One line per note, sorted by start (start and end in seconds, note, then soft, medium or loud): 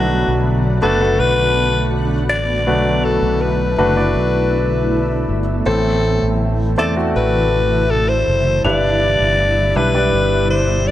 0.00 0.23 B1 medium
0.00 0.78 B2 soft
0.00 5.62 D3 medium
0.00 0.78 F#3 medium
0.00 0.77 A3 medium
0.00 8.60 A3 medium
0.00 5.62 B3 medium
0.00 0.77 D4 medium
0.00 0.42 F#4 medium
0.00 0.77 F#4 medium
0.00 2.64 F#4 medium
0.00 0.77 B4 medium
0.28 0.79 B1 medium
0.82 1.17 F#1 medium
0.82 0.99 A3 medium
0.82 0.99 D4 medium
0.82 1.00 F#4 medium
0.82 1.21 A4 medium
0.82 1.00 B4 medium
1.01 2.41 A3 medium
1.01 2.41 D4 medium
1.01 2.41 F#4 medium
1.01 2.41 B4 medium
1.19 2.30 B1 medium
1.19 1.93 B4 medium
2.30 2.66 A1 medium
2.30 3.06 D5 medium
2.66 3.18 B1 medium
2.66 3.74 B2 soft
2.66 3.74 F#3 soft
2.66 3.73 A3 medium
2.66 3.73 D4 soft
2.66 5.63 E4 medium
2.66 3.73 F#4 soft
2.66 3.73 B4 medium
3.04 3.43 A4 medium
3.22 3.74 B1 medium
3.41 5.29 B4 medium
3.78 4.13 F#1 medium
3.78 3.95 A3 medium
3.78 3.95 D4 medium
3.78 3.96 F#4 medium
3.78 3.96 B4 medium
3.96 5.40 A3 soft
3.96 5.40 D4 soft
3.96 5.40 F#4 soft
3.96 5.40 D5 medium
4.15 5.24 B1 medium
5.29 5.63 G1 medium
5.66 6.18 A1 medium
5.66 6.74 A2 soft
5.66 8.61 C3 medium
5.66 8.61 E3 medium
5.66 6.75 E3 soft
5.66 6.73 A3 medium
5.66 6.73 C4 soft
5.66 10.91 E4 medium
5.66 6.73 E4 soft
5.66 6.37 A4 medium
5.66 6.73 C5 medium
6.22 6.75 A1 medium
6.78 7.13 E2 medium
6.78 6.94 A3 medium
6.78 6.95 C4 medium
6.78 6.95 E4 medium
6.78 6.95 A4 medium
6.78 6.96 D5 medium
6.96 8.38 A3 medium
6.96 8.38 C4 soft
6.96 8.38 E4 soft
6.96 8.38 F#4 medium
7.16 8.23 A1 medium
7.16 7.92 B4 medium
7.91 8.10 A4 medium
8.09 8.64 C5 medium
8.27 8.62 F#1 medium
8.64 9.16 G1 medium
8.64 9.72 G2 soft
8.64 10.91 B2 medium
8.64 10.91 D3 medium
8.64 9.70 G3 medium
8.64 10.91 G3 medium
8.64 9.70 D4 soft
8.64 9.70 E4 medium
8.64 9.71 B4 medium
8.64 9.78 D5 medium
9.20 9.72 G1 medium
9.76 10.10 B1 medium
9.76 9.93 G3 medium
9.76 9.93 D4 medium
9.76 9.93 E4 medium
9.76 10.50 B4 medium
9.76 9.94 B4 medium
9.95 10.91 G3 medium
9.95 10.91 D4 soft
9.95 10.91 E4 soft
9.95 10.91 D5 medium
10.12 10.91 G1 medium
10.51 10.89 C5 medium
10.88 10.91 D5 medium